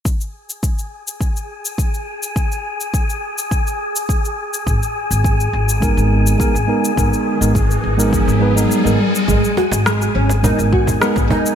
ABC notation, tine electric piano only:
X:1
M:4/4
L:1/16
Q:1/4=104
K:G#m
V:1 name="Tine electric piano"
z16 | z16 | z8 [G,B,DA]4 [G,B,DA] z [G,B,DA]2 | [G,B,DA]3 [G,B,DA] z3 [G,B,DA]3 [G,B,DB] [G,B,DA]2 [G,B,DA] z2 |
z8 [G,B,DA]4 [G,B,DA] z [G,B,DA]2 |]